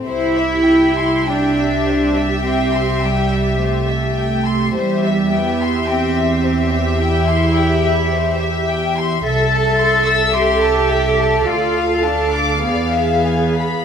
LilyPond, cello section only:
\new Staff \with { instrumentName = "Cello section" } { \time 4/4 \key c \major \tempo 4 = 52 e'4 d'4 c'8 g8 a4 | g8 b8 c'4 e'4. r8 | \key a \minor a'4 g'4 f'8 d'8 b4 | }